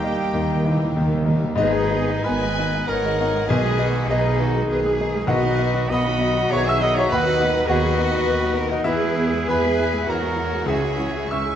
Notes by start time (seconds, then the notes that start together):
Already playing: D#2 D#3 G3 A#3 D#4 G4 G5
0.04 D#3 A#3 D#4 A#4 D#5
0.11 D#3
0.18 D#3
0.27 D#3
0.33 D#2 D#3
0.47 D#3
0.56 D#3
0.63 D#3 A#3 D#4 D#5
0.67 D#3 E3 D#4 A#4
0.77 D#3
0.84 D#3
0.92 D#3
0.96 D#2 D#3
1.08 D#3
1.14 D#3
1.22 D#3 A#3 D#4
1.26 D#3 G3 D#4 A#4 D#5
1.36 D#3
1.44 D#3
1.55 G#1 G#2 D#3 D#4 G#4 B4 D#5
1.60 B3
1.72 G#3 D#4 D#5
1.91 D#3 B3 D#4 G#4
2.08 G#3 D#4 D#5
2.24 G#1 D#3 B3 G#4 B4 D#5 G#5 B5
2.41 G#3 D#4 D#5
2.58 D#3 B3 D#4 G#4
2.73 G#3 D#4 D#5
2.87 G#1 D#3 B3 D#4 G#4 A#4 B4 C#5 F#5 A#5
3.02 G#3 D#4 D#5
3.16 D#3 B3 G#4
3.21 D#4
3.32 G#3 D#4
3.37 D#5
3.45 B1 D#3 B3 G#4 B4 D#5 G#5
3.50 B1 G#4 D#5
3.62 G#3 D#4
3.66 G#4
3.77 D#3 B3 D#4 F#4 G#4
3.94 G#3 D#4 G#4
4.06 B1 D#3 B3 D#4 G#4 B4
4.11 D#4 B4 D#5
4.24 G#3 D#4 G#4
4.37 D#3 B3 D#4 F#4 G#4
4.53 G#3 D#4
4.57 G#4
4.67 B1 D#3 B3 G#4
4.72 B4
4.82 G#3 D#4
4.86 G#4
4.98 D#3 B3 D#4 G#4
5.13 G#3 D#4 G#4
5.26 B1 D#3 B3 D#4 F#4 B4 D#5 F#5
5.43 F#3 D#4 F#4
5.59 D#3 B3 D#4 F#4
5.74 F#3 D#4 F#4
5.89 B1 D#3 B3 F#4 D#5 F#5 B5 D#6
5.93 D#5 B5
6.05 F#3 D#4 F#4
6.20 D#3 B3 D#4 F#4
6.36 F#3 D#4 F#4
6.51 B1 D#3 B3 F#4 G#4 B4 C#5 E5 A#5 C#6
6.65 F#3 D#4 F#4 E5 G#5 C#6
6.69 E5 E6
6.80 D#3 B3 D#4 F#4 D#5 F#5 B5 D#6
6.95 F#3 D#4 F#4 C#5 E5 A#5
6.99 C#5 C#6
7.09 D#2 D#3 B3 F#4 B4 D#5 F#5 B5
7.13 B4 F#5
7.25 F#3 D#4 F#4
7.39 D#3 B3 D#4 F#4 B4
7.53 F#3 D#4 F#4
7.66 D#2 D#3 B3 F#4 G#4 B4 D#5 F#5
7.70 F#4 D#5
7.82 F#3 D#4 F#4
7.96 D#3 B3 D#4 F#4
8.12 F#3 D#4 F#4
8.24 D#2 D#3 B3 F#4 B4
8.41 F#3 D#4 F#4
8.54 D#3 B3 D#4 F#4 A#4
8.69 F#3 D#4 F#4 B4 D#5
8.84 E2 E3 B3 E4 G#4 B4 E5
9.01 G#3 E4 G#4
9.16 E3 B3 E4 G#4
9.33 G#3 E4 G#4
9.49 E2 E3 B3 G#4 B4 E5 G#5 B5
9.64 G#3 E4 G#4
9.79 E3 B3 E4 G#4
9.93 G#3 E4 G#4
10.07 E2 E3 B3 F#4 G#4 A#4 B4 C#5 F#5 A#5
10.21 G#3 E4 G#4
10.36 E3 B3 E4 G#4
10.52 G#3 E4 G#4
10.65 C#2 E3 C#4 G#4 C#5 E5 G#5
10.69 E5
10.82 G#3 E4 G#4
10.97 E3 C#4 E4 G#4
11.13 G#3 E4
11.17 G#4
11.28 C#2 E3 C#4 E4 G#4 E5 G#5 C#6 E6
11.33 C#4 C#6
11.44 G#3 E4 G#4